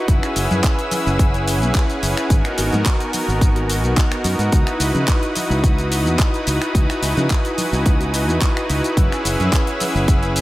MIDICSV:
0, 0, Header, 1, 5, 480
1, 0, Start_track
1, 0, Tempo, 555556
1, 71, Time_signature, 4, 2, 24, 8
1, 8994, End_track
2, 0, Start_track
2, 0, Title_t, "Violin section"
2, 0, Program_c, 0, 48
2, 0, Note_on_c, 0, 71, 82
2, 0, Note_on_c, 0, 78, 72
2, 71, Note_on_c, 0, 80, 74
2, 71, Note_on_c, 0, 88, 91
2, 1960, Note_off_c, 0, 71, 0
2, 1971, Note_off_c, 0, 88, 0
2, 1987, Note_on_c, 0, 70, 82
2, 3876, Note_off_c, 0, 80, 0
2, 3890, Note_off_c, 0, 70, 0
2, 3912, Note_on_c, 0, 87, 89
2, 3913, Note_on_c, 0, 71, 82
2, 5799, Note_off_c, 0, 78, 0
2, 5834, Note_on_c, 0, 80, 73
2, 7717, Note_off_c, 0, 71, 0
2, 7717, Note_off_c, 0, 87, 0
2, 7733, Note_off_c, 0, 80, 0
2, 7741, Note_on_c, 0, 71, 86
2, 7742, Note_on_c, 0, 78, 76
2, 7744, Note_on_c, 0, 80, 76
2, 7747, Note_on_c, 0, 88, 91
2, 8994, Note_off_c, 0, 71, 0
2, 8994, Note_off_c, 0, 78, 0
2, 8994, Note_off_c, 0, 80, 0
2, 8994, Note_off_c, 0, 88, 0
2, 8994, End_track
3, 0, Start_track
3, 0, Title_t, "Analog synth pad"
3, 0, Program_c, 1, 89
3, 61, Note_on_c, 1, 61, 92
3, 64, Note_on_c, 1, 64, 84
3, 73, Note_on_c, 1, 68, 84
3, 79, Note_on_c, 1, 71, 102
3, 1478, Note_off_c, 1, 61, 0
3, 1480, Note_off_c, 1, 64, 0
3, 1485, Note_off_c, 1, 68, 0
3, 1487, Note_off_c, 1, 71, 0
3, 1504, Note_on_c, 1, 61, 89
3, 1505, Note_on_c, 1, 64, 84
3, 1507, Note_on_c, 1, 68, 83
3, 1511, Note_on_c, 1, 71, 101
3, 1960, Note_off_c, 1, 61, 0
3, 1961, Note_off_c, 1, 64, 0
3, 1962, Note_off_c, 1, 68, 0
3, 1964, Note_off_c, 1, 71, 0
3, 1981, Note_on_c, 1, 59, 93
3, 1987, Note_on_c, 1, 63, 86
3, 1992, Note_on_c, 1, 66, 86
3, 1999, Note_on_c, 1, 70, 102
3, 3399, Note_off_c, 1, 59, 0
3, 3401, Note_off_c, 1, 63, 0
3, 3404, Note_off_c, 1, 66, 0
3, 3408, Note_off_c, 1, 70, 0
3, 3423, Note_on_c, 1, 59, 89
3, 3427, Note_on_c, 1, 63, 82
3, 3431, Note_on_c, 1, 66, 82
3, 3433, Note_on_c, 1, 70, 99
3, 3880, Note_off_c, 1, 59, 0
3, 3882, Note_off_c, 1, 63, 0
3, 3884, Note_off_c, 1, 66, 0
3, 3885, Note_off_c, 1, 70, 0
3, 3902, Note_on_c, 1, 63, 91
3, 3907, Note_on_c, 1, 64, 82
3, 3913, Note_on_c, 1, 66, 87
3, 3920, Note_on_c, 1, 71, 101
3, 5319, Note_off_c, 1, 63, 0
3, 5322, Note_off_c, 1, 64, 0
3, 5325, Note_off_c, 1, 66, 0
3, 5328, Note_off_c, 1, 71, 0
3, 5341, Note_on_c, 1, 63, 90
3, 5345, Note_on_c, 1, 64, 80
3, 5347, Note_on_c, 1, 66, 80
3, 5348, Note_on_c, 1, 71, 100
3, 5799, Note_off_c, 1, 63, 0
3, 5801, Note_off_c, 1, 64, 0
3, 5801, Note_off_c, 1, 66, 0
3, 5802, Note_off_c, 1, 71, 0
3, 5823, Note_on_c, 1, 63, 94
3, 5829, Note_on_c, 1, 64, 85
3, 5834, Note_on_c, 1, 66, 87
3, 5838, Note_on_c, 1, 71, 103
3, 7240, Note_off_c, 1, 63, 0
3, 7243, Note_off_c, 1, 64, 0
3, 7245, Note_off_c, 1, 66, 0
3, 7247, Note_off_c, 1, 71, 0
3, 7268, Note_on_c, 1, 63, 91
3, 7272, Note_on_c, 1, 64, 82
3, 7275, Note_on_c, 1, 66, 86
3, 7276, Note_on_c, 1, 71, 102
3, 7722, Note_off_c, 1, 63, 0
3, 7724, Note_off_c, 1, 64, 0
3, 7726, Note_off_c, 1, 66, 0
3, 7726, Note_off_c, 1, 71, 0
3, 7745, Note_on_c, 1, 61, 95
3, 7749, Note_on_c, 1, 64, 85
3, 7757, Note_on_c, 1, 68, 87
3, 7762, Note_on_c, 1, 71, 102
3, 8994, Note_off_c, 1, 61, 0
3, 8994, Note_off_c, 1, 64, 0
3, 8994, Note_off_c, 1, 68, 0
3, 8994, Note_off_c, 1, 71, 0
3, 8994, End_track
4, 0, Start_track
4, 0, Title_t, "Fingered electric bass"
4, 0, Program_c, 2, 33
4, 70, Note_on_c, 2, 30, 97
4, 159, Note_off_c, 2, 30, 0
4, 310, Note_on_c, 2, 30, 83
4, 399, Note_off_c, 2, 30, 0
4, 439, Note_on_c, 2, 42, 102
4, 518, Note_off_c, 2, 42, 0
4, 919, Note_on_c, 2, 30, 96
4, 1398, Note_off_c, 2, 30, 0
4, 1398, Note_on_c, 2, 35, 80
4, 1477, Note_off_c, 2, 35, 0
4, 1751, Note_on_c, 2, 30, 98
4, 1840, Note_off_c, 2, 30, 0
4, 1989, Note_on_c, 2, 32, 100
4, 2079, Note_off_c, 2, 32, 0
4, 2230, Note_on_c, 2, 32, 81
4, 2319, Note_off_c, 2, 32, 0
4, 2358, Note_on_c, 2, 44, 101
4, 2437, Note_off_c, 2, 44, 0
4, 2834, Note_on_c, 2, 32, 93
4, 3314, Note_off_c, 2, 32, 0
4, 3314, Note_on_c, 2, 35, 83
4, 3395, Note_off_c, 2, 35, 0
4, 3667, Note_on_c, 2, 42, 95
4, 3758, Note_off_c, 2, 42, 0
4, 3790, Note_on_c, 2, 44, 93
4, 3873, Note_off_c, 2, 44, 0
4, 3910, Note_on_c, 2, 37, 99
4, 4000, Note_off_c, 2, 37, 0
4, 4145, Note_on_c, 2, 37, 80
4, 4237, Note_off_c, 2, 37, 0
4, 4271, Note_on_c, 2, 49, 97
4, 4354, Note_off_c, 2, 49, 0
4, 4753, Note_on_c, 2, 37, 99
4, 5236, Note_off_c, 2, 37, 0
4, 5236, Note_on_c, 2, 40, 81
4, 5316, Note_off_c, 2, 40, 0
4, 5590, Note_on_c, 2, 37, 99
4, 5679, Note_off_c, 2, 37, 0
4, 5830, Note_on_c, 2, 37, 96
4, 5919, Note_off_c, 2, 37, 0
4, 6066, Note_on_c, 2, 37, 81
4, 6157, Note_off_c, 2, 37, 0
4, 6193, Note_on_c, 2, 49, 103
4, 6275, Note_off_c, 2, 49, 0
4, 6674, Note_on_c, 2, 37, 97
4, 7158, Note_off_c, 2, 37, 0
4, 7158, Note_on_c, 2, 40, 84
4, 7237, Note_off_c, 2, 40, 0
4, 7513, Note_on_c, 2, 37, 102
4, 7601, Note_off_c, 2, 37, 0
4, 7751, Note_on_c, 2, 30, 99
4, 7840, Note_off_c, 2, 30, 0
4, 7991, Note_on_c, 2, 30, 82
4, 8080, Note_off_c, 2, 30, 0
4, 8119, Note_on_c, 2, 42, 97
4, 8198, Note_off_c, 2, 42, 0
4, 8597, Note_on_c, 2, 30, 98
4, 8994, Note_off_c, 2, 30, 0
4, 8994, End_track
5, 0, Start_track
5, 0, Title_t, "Drums"
5, 71, Note_on_c, 9, 36, 126
5, 71, Note_on_c, 9, 42, 83
5, 76, Note_on_c, 9, 82, 43
5, 157, Note_off_c, 9, 42, 0
5, 158, Note_off_c, 9, 36, 0
5, 162, Note_off_c, 9, 82, 0
5, 199, Note_on_c, 9, 26, 64
5, 199, Note_on_c, 9, 42, 36
5, 205, Note_on_c, 9, 82, 21
5, 286, Note_off_c, 9, 26, 0
5, 286, Note_off_c, 9, 42, 0
5, 291, Note_off_c, 9, 82, 0
5, 311, Note_on_c, 9, 46, 110
5, 316, Note_on_c, 9, 82, 76
5, 397, Note_off_c, 9, 46, 0
5, 403, Note_off_c, 9, 82, 0
5, 439, Note_on_c, 9, 42, 38
5, 441, Note_on_c, 9, 64, 95
5, 445, Note_on_c, 9, 82, 33
5, 525, Note_off_c, 9, 42, 0
5, 527, Note_off_c, 9, 64, 0
5, 531, Note_off_c, 9, 82, 0
5, 551, Note_on_c, 9, 36, 122
5, 551, Note_on_c, 9, 42, 78
5, 552, Note_on_c, 9, 39, 124
5, 557, Note_on_c, 9, 82, 43
5, 637, Note_off_c, 9, 36, 0
5, 637, Note_off_c, 9, 42, 0
5, 639, Note_off_c, 9, 39, 0
5, 643, Note_off_c, 9, 82, 0
5, 679, Note_on_c, 9, 42, 52
5, 685, Note_on_c, 9, 82, 21
5, 766, Note_off_c, 9, 42, 0
5, 771, Note_off_c, 9, 82, 0
5, 789, Note_on_c, 9, 64, 82
5, 790, Note_on_c, 9, 46, 100
5, 795, Note_on_c, 9, 82, 80
5, 876, Note_off_c, 9, 46, 0
5, 876, Note_off_c, 9, 64, 0
5, 881, Note_off_c, 9, 82, 0
5, 923, Note_on_c, 9, 82, 32
5, 1009, Note_off_c, 9, 82, 0
5, 1031, Note_on_c, 9, 36, 127
5, 1032, Note_on_c, 9, 42, 79
5, 1037, Note_on_c, 9, 82, 43
5, 1117, Note_off_c, 9, 36, 0
5, 1118, Note_off_c, 9, 42, 0
5, 1124, Note_off_c, 9, 82, 0
5, 1160, Note_on_c, 9, 42, 38
5, 1166, Note_on_c, 9, 82, 22
5, 1247, Note_off_c, 9, 42, 0
5, 1252, Note_off_c, 9, 82, 0
5, 1275, Note_on_c, 9, 46, 112
5, 1280, Note_on_c, 9, 82, 78
5, 1361, Note_off_c, 9, 46, 0
5, 1366, Note_off_c, 9, 82, 0
5, 1398, Note_on_c, 9, 63, 67
5, 1399, Note_on_c, 9, 42, 36
5, 1405, Note_on_c, 9, 82, 32
5, 1485, Note_off_c, 9, 63, 0
5, 1486, Note_off_c, 9, 42, 0
5, 1491, Note_off_c, 9, 82, 0
5, 1510, Note_on_c, 9, 36, 127
5, 1511, Note_on_c, 9, 42, 79
5, 1511, Note_on_c, 9, 60, 50
5, 1512, Note_on_c, 9, 39, 124
5, 1516, Note_on_c, 9, 82, 45
5, 1596, Note_off_c, 9, 36, 0
5, 1597, Note_off_c, 9, 42, 0
5, 1597, Note_off_c, 9, 60, 0
5, 1599, Note_off_c, 9, 39, 0
5, 1603, Note_off_c, 9, 82, 0
5, 1638, Note_on_c, 9, 42, 35
5, 1643, Note_on_c, 9, 82, 22
5, 1724, Note_off_c, 9, 42, 0
5, 1730, Note_off_c, 9, 82, 0
5, 1752, Note_on_c, 9, 46, 94
5, 1758, Note_on_c, 9, 82, 74
5, 1839, Note_off_c, 9, 46, 0
5, 1844, Note_off_c, 9, 82, 0
5, 1878, Note_on_c, 9, 26, 89
5, 1878, Note_on_c, 9, 42, 53
5, 1884, Note_on_c, 9, 82, 32
5, 1965, Note_off_c, 9, 26, 0
5, 1965, Note_off_c, 9, 42, 0
5, 1970, Note_off_c, 9, 82, 0
5, 1989, Note_on_c, 9, 42, 77
5, 1990, Note_on_c, 9, 36, 127
5, 1994, Note_on_c, 9, 82, 45
5, 2075, Note_off_c, 9, 42, 0
5, 2076, Note_off_c, 9, 36, 0
5, 2081, Note_off_c, 9, 82, 0
5, 2116, Note_on_c, 9, 26, 66
5, 2116, Note_on_c, 9, 42, 34
5, 2121, Note_on_c, 9, 82, 21
5, 2202, Note_off_c, 9, 26, 0
5, 2202, Note_off_c, 9, 42, 0
5, 2208, Note_off_c, 9, 82, 0
5, 2227, Note_on_c, 9, 46, 111
5, 2232, Note_on_c, 9, 60, 62
5, 2233, Note_on_c, 9, 82, 77
5, 2314, Note_off_c, 9, 46, 0
5, 2319, Note_off_c, 9, 60, 0
5, 2319, Note_off_c, 9, 82, 0
5, 2354, Note_on_c, 9, 42, 36
5, 2360, Note_on_c, 9, 82, 33
5, 2362, Note_on_c, 9, 63, 69
5, 2365, Note_on_c, 9, 64, 85
5, 2441, Note_off_c, 9, 42, 0
5, 2446, Note_off_c, 9, 82, 0
5, 2448, Note_off_c, 9, 63, 0
5, 2451, Note_off_c, 9, 64, 0
5, 2469, Note_on_c, 9, 36, 123
5, 2469, Note_on_c, 9, 42, 81
5, 2470, Note_on_c, 9, 39, 121
5, 2474, Note_on_c, 9, 82, 44
5, 2555, Note_off_c, 9, 42, 0
5, 2556, Note_off_c, 9, 36, 0
5, 2556, Note_off_c, 9, 39, 0
5, 2560, Note_off_c, 9, 82, 0
5, 2596, Note_on_c, 9, 42, 51
5, 2601, Note_on_c, 9, 82, 22
5, 2682, Note_off_c, 9, 42, 0
5, 2688, Note_off_c, 9, 82, 0
5, 2707, Note_on_c, 9, 46, 102
5, 2712, Note_on_c, 9, 64, 71
5, 2712, Note_on_c, 9, 82, 82
5, 2793, Note_off_c, 9, 46, 0
5, 2798, Note_off_c, 9, 82, 0
5, 2799, Note_off_c, 9, 64, 0
5, 2842, Note_on_c, 9, 82, 32
5, 2928, Note_off_c, 9, 82, 0
5, 2950, Note_on_c, 9, 36, 125
5, 2951, Note_on_c, 9, 42, 74
5, 2957, Note_on_c, 9, 82, 42
5, 3036, Note_off_c, 9, 36, 0
5, 3038, Note_off_c, 9, 42, 0
5, 3043, Note_off_c, 9, 82, 0
5, 3075, Note_on_c, 9, 60, 62
5, 3077, Note_on_c, 9, 42, 37
5, 3082, Note_on_c, 9, 82, 22
5, 3161, Note_off_c, 9, 60, 0
5, 3163, Note_off_c, 9, 42, 0
5, 3168, Note_off_c, 9, 82, 0
5, 3193, Note_on_c, 9, 46, 111
5, 3198, Note_on_c, 9, 82, 82
5, 3279, Note_off_c, 9, 46, 0
5, 3285, Note_off_c, 9, 82, 0
5, 3314, Note_on_c, 9, 63, 62
5, 3317, Note_on_c, 9, 42, 35
5, 3323, Note_on_c, 9, 82, 32
5, 3401, Note_off_c, 9, 63, 0
5, 3403, Note_off_c, 9, 42, 0
5, 3409, Note_off_c, 9, 82, 0
5, 3430, Note_on_c, 9, 36, 122
5, 3433, Note_on_c, 9, 42, 76
5, 3434, Note_on_c, 9, 39, 120
5, 3438, Note_on_c, 9, 82, 45
5, 3516, Note_off_c, 9, 36, 0
5, 3519, Note_off_c, 9, 42, 0
5, 3520, Note_off_c, 9, 39, 0
5, 3524, Note_off_c, 9, 82, 0
5, 3556, Note_on_c, 9, 26, 88
5, 3556, Note_on_c, 9, 42, 34
5, 3562, Note_on_c, 9, 82, 21
5, 3643, Note_off_c, 9, 26, 0
5, 3643, Note_off_c, 9, 42, 0
5, 3648, Note_off_c, 9, 82, 0
5, 3666, Note_on_c, 9, 46, 94
5, 3672, Note_on_c, 9, 82, 76
5, 3753, Note_off_c, 9, 46, 0
5, 3758, Note_off_c, 9, 82, 0
5, 3794, Note_on_c, 9, 42, 50
5, 3799, Note_on_c, 9, 82, 34
5, 3880, Note_off_c, 9, 42, 0
5, 3885, Note_off_c, 9, 82, 0
5, 3908, Note_on_c, 9, 42, 81
5, 3910, Note_on_c, 9, 36, 122
5, 3914, Note_on_c, 9, 82, 48
5, 3995, Note_off_c, 9, 42, 0
5, 3997, Note_off_c, 9, 36, 0
5, 4000, Note_off_c, 9, 82, 0
5, 4034, Note_on_c, 9, 26, 66
5, 4034, Note_on_c, 9, 42, 36
5, 4039, Note_on_c, 9, 82, 22
5, 4120, Note_off_c, 9, 26, 0
5, 4120, Note_off_c, 9, 42, 0
5, 4125, Note_off_c, 9, 82, 0
5, 4148, Note_on_c, 9, 46, 108
5, 4153, Note_on_c, 9, 82, 77
5, 4234, Note_off_c, 9, 46, 0
5, 4240, Note_off_c, 9, 82, 0
5, 4275, Note_on_c, 9, 42, 36
5, 4276, Note_on_c, 9, 64, 92
5, 4281, Note_on_c, 9, 82, 34
5, 4362, Note_off_c, 9, 42, 0
5, 4363, Note_off_c, 9, 64, 0
5, 4367, Note_off_c, 9, 82, 0
5, 4388, Note_on_c, 9, 42, 78
5, 4389, Note_on_c, 9, 39, 117
5, 4390, Note_on_c, 9, 36, 123
5, 4393, Note_on_c, 9, 82, 47
5, 4474, Note_off_c, 9, 42, 0
5, 4476, Note_off_c, 9, 36, 0
5, 4476, Note_off_c, 9, 39, 0
5, 4480, Note_off_c, 9, 82, 0
5, 4516, Note_on_c, 9, 42, 49
5, 4522, Note_on_c, 9, 82, 23
5, 4603, Note_off_c, 9, 42, 0
5, 4608, Note_off_c, 9, 82, 0
5, 4627, Note_on_c, 9, 46, 100
5, 4632, Note_on_c, 9, 82, 85
5, 4633, Note_on_c, 9, 64, 71
5, 4713, Note_off_c, 9, 46, 0
5, 4719, Note_off_c, 9, 64, 0
5, 4719, Note_off_c, 9, 82, 0
5, 4760, Note_on_c, 9, 82, 34
5, 4847, Note_off_c, 9, 82, 0
5, 4870, Note_on_c, 9, 36, 123
5, 4872, Note_on_c, 9, 42, 75
5, 4877, Note_on_c, 9, 82, 44
5, 4956, Note_off_c, 9, 36, 0
5, 4958, Note_off_c, 9, 42, 0
5, 4964, Note_off_c, 9, 82, 0
5, 4998, Note_on_c, 9, 42, 38
5, 5003, Note_on_c, 9, 82, 24
5, 5084, Note_off_c, 9, 42, 0
5, 5090, Note_off_c, 9, 82, 0
5, 5112, Note_on_c, 9, 46, 111
5, 5118, Note_on_c, 9, 82, 79
5, 5199, Note_off_c, 9, 46, 0
5, 5204, Note_off_c, 9, 82, 0
5, 5237, Note_on_c, 9, 42, 35
5, 5241, Note_on_c, 9, 63, 60
5, 5242, Note_on_c, 9, 82, 34
5, 5323, Note_off_c, 9, 42, 0
5, 5327, Note_off_c, 9, 63, 0
5, 5329, Note_off_c, 9, 82, 0
5, 5349, Note_on_c, 9, 42, 78
5, 5350, Note_on_c, 9, 36, 124
5, 5351, Note_on_c, 9, 39, 119
5, 5351, Note_on_c, 9, 60, 55
5, 5355, Note_on_c, 9, 82, 47
5, 5436, Note_off_c, 9, 36, 0
5, 5436, Note_off_c, 9, 42, 0
5, 5437, Note_off_c, 9, 39, 0
5, 5437, Note_off_c, 9, 60, 0
5, 5441, Note_off_c, 9, 82, 0
5, 5478, Note_on_c, 9, 42, 35
5, 5483, Note_on_c, 9, 82, 22
5, 5564, Note_off_c, 9, 42, 0
5, 5570, Note_off_c, 9, 82, 0
5, 5589, Note_on_c, 9, 46, 95
5, 5594, Note_on_c, 9, 82, 78
5, 5675, Note_off_c, 9, 46, 0
5, 5681, Note_off_c, 9, 82, 0
5, 5716, Note_on_c, 9, 26, 87
5, 5716, Note_on_c, 9, 42, 52
5, 5721, Note_on_c, 9, 82, 34
5, 5802, Note_off_c, 9, 26, 0
5, 5802, Note_off_c, 9, 42, 0
5, 5808, Note_off_c, 9, 82, 0
5, 5831, Note_on_c, 9, 36, 115
5, 5833, Note_on_c, 9, 42, 80
5, 5838, Note_on_c, 9, 82, 49
5, 5917, Note_off_c, 9, 36, 0
5, 5919, Note_off_c, 9, 42, 0
5, 5925, Note_off_c, 9, 82, 0
5, 5960, Note_on_c, 9, 26, 60
5, 5960, Note_on_c, 9, 42, 38
5, 5965, Note_on_c, 9, 82, 23
5, 6046, Note_off_c, 9, 26, 0
5, 6046, Note_off_c, 9, 42, 0
5, 6052, Note_off_c, 9, 82, 0
5, 6070, Note_on_c, 9, 46, 105
5, 6073, Note_on_c, 9, 60, 59
5, 6076, Note_on_c, 9, 82, 81
5, 6157, Note_off_c, 9, 46, 0
5, 6160, Note_off_c, 9, 60, 0
5, 6162, Note_off_c, 9, 82, 0
5, 6195, Note_on_c, 9, 64, 92
5, 6197, Note_on_c, 9, 42, 38
5, 6203, Note_on_c, 9, 82, 36
5, 6282, Note_off_c, 9, 64, 0
5, 6284, Note_off_c, 9, 42, 0
5, 6289, Note_off_c, 9, 82, 0
5, 6310, Note_on_c, 9, 42, 81
5, 6311, Note_on_c, 9, 36, 115
5, 6311, Note_on_c, 9, 39, 116
5, 6315, Note_on_c, 9, 82, 49
5, 6396, Note_off_c, 9, 42, 0
5, 6397, Note_off_c, 9, 36, 0
5, 6398, Note_off_c, 9, 39, 0
5, 6402, Note_off_c, 9, 82, 0
5, 6436, Note_on_c, 9, 42, 53
5, 6441, Note_on_c, 9, 82, 24
5, 6522, Note_off_c, 9, 42, 0
5, 6527, Note_off_c, 9, 82, 0
5, 6548, Note_on_c, 9, 64, 79
5, 6549, Note_on_c, 9, 46, 91
5, 6554, Note_on_c, 9, 82, 84
5, 6635, Note_off_c, 9, 46, 0
5, 6635, Note_off_c, 9, 64, 0
5, 6640, Note_off_c, 9, 82, 0
5, 6679, Note_on_c, 9, 82, 36
5, 6766, Note_off_c, 9, 82, 0
5, 6788, Note_on_c, 9, 42, 76
5, 6791, Note_on_c, 9, 36, 122
5, 6793, Note_on_c, 9, 82, 46
5, 6874, Note_off_c, 9, 42, 0
5, 6878, Note_off_c, 9, 36, 0
5, 6880, Note_off_c, 9, 82, 0
5, 6918, Note_on_c, 9, 42, 38
5, 6919, Note_on_c, 9, 60, 61
5, 6923, Note_on_c, 9, 82, 25
5, 7004, Note_off_c, 9, 42, 0
5, 7005, Note_off_c, 9, 60, 0
5, 7009, Note_off_c, 9, 82, 0
5, 7031, Note_on_c, 9, 46, 103
5, 7037, Note_on_c, 9, 82, 81
5, 7117, Note_off_c, 9, 46, 0
5, 7123, Note_off_c, 9, 82, 0
5, 7160, Note_on_c, 9, 63, 63
5, 7162, Note_on_c, 9, 42, 36
5, 7168, Note_on_c, 9, 82, 35
5, 7247, Note_off_c, 9, 63, 0
5, 7249, Note_off_c, 9, 42, 0
5, 7254, Note_off_c, 9, 82, 0
5, 7270, Note_on_c, 9, 36, 118
5, 7271, Note_on_c, 9, 42, 80
5, 7272, Note_on_c, 9, 39, 119
5, 7276, Note_on_c, 9, 82, 50
5, 7357, Note_off_c, 9, 36, 0
5, 7357, Note_off_c, 9, 42, 0
5, 7359, Note_off_c, 9, 39, 0
5, 7363, Note_off_c, 9, 82, 0
5, 7404, Note_on_c, 9, 26, 81
5, 7404, Note_on_c, 9, 42, 36
5, 7409, Note_on_c, 9, 82, 23
5, 7490, Note_off_c, 9, 26, 0
5, 7490, Note_off_c, 9, 42, 0
5, 7495, Note_off_c, 9, 82, 0
5, 7513, Note_on_c, 9, 46, 89
5, 7518, Note_on_c, 9, 82, 81
5, 7599, Note_off_c, 9, 46, 0
5, 7605, Note_off_c, 9, 82, 0
5, 7640, Note_on_c, 9, 42, 54
5, 7646, Note_on_c, 9, 82, 37
5, 7727, Note_off_c, 9, 42, 0
5, 7732, Note_off_c, 9, 82, 0
5, 7750, Note_on_c, 9, 36, 119
5, 7753, Note_on_c, 9, 42, 84
5, 7759, Note_on_c, 9, 82, 48
5, 7837, Note_off_c, 9, 36, 0
5, 7840, Note_off_c, 9, 42, 0
5, 7845, Note_off_c, 9, 82, 0
5, 7883, Note_on_c, 9, 26, 58
5, 7883, Note_on_c, 9, 42, 39
5, 7889, Note_on_c, 9, 82, 24
5, 7970, Note_off_c, 9, 26, 0
5, 7970, Note_off_c, 9, 42, 0
5, 7975, Note_off_c, 9, 82, 0
5, 7994, Note_on_c, 9, 46, 100
5, 7999, Note_on_c, 9, 82, 82
5, 8080, Note_off_c, 9, 46, 0
5, 8085, Note_off_c, 9, 82, 0
5, 8122, Note_on_c, 9, 42, 39
5, 8124, Note_on_c, 9, 64, 90
5, 8127, Note_on_c, 9, 82, 36
5, 8208, Note_off_c, 9, 42, 0
5, 8210, Note_off_c, 9, 64, 0
5, 8213, Note_off_c, 9, 82, 0
5, 8230, Note_on_c, 9, 36, 116
5, 8233, Note_on_c, 9, 42, 86
5, 8235, Note_on_c, 9, 39, 117
5, 8239, Note_on_c, 9, 82, 50
5, 8316, Note_off_c, 9, 36, 0
5, 8320, Note_off_c, 9, 42, 0
5, 8321, Note_off_c, 9, 39, 0
5, 8325, Note_off_c, 9, 82, 0
5, 8357, Note_on_c, 9, 42, 53
5, 8362, Note_on_c, 9, 82, 23
5, 8443, Note_off_c, 9, 42, 0
5, 8448, Note_off_c, 9, 82, 0
5, 8471, Note_on_c, 9, 46, 89
5, 8475, Note_on_c, 9, 64, 74
5, 8476, Note_on_c, 9, 82, 87
5, 8557, Note_off_c, 9, 46, 0
5, 8561, Note_off_c, 9, 64, 0
5, 8562, Note_off_c, 9, 82, 0
5, 8602, Note_on_c, 9, 82, 35
5, 8689, Note_off_c, 9, 82, 0
5, 8709, Note_on_c, 9, 42, 81
5, 8710, Note_on_c, 9, 36, 121
5, 8715, Note_on_c, 9, 82, 46
5, 8796, Note_off_c, 9, 36, 0
5, 8796, Note_off_c, 9, 42, 0
5, 8801, Note_off_c, 9, 82, 0
5, 8836, Note_on_c, 9, 42, 41
5, 8841, Note_on_c, 9, 82, 25
5, 8922, Note_off_c, 9, 42, 0
5, 8928, Note_off_c, 9, 82, 0
5, 8950, Note_on_c, 9, 46, 100
5, 8955, Note_on_c, 9, 82, 86
5, 8994, Note_off_c, 9, 46, 0
5, 8994, Note_off_c, 9, 82, 0
5, 8994, End_track
0, 0, End_of_file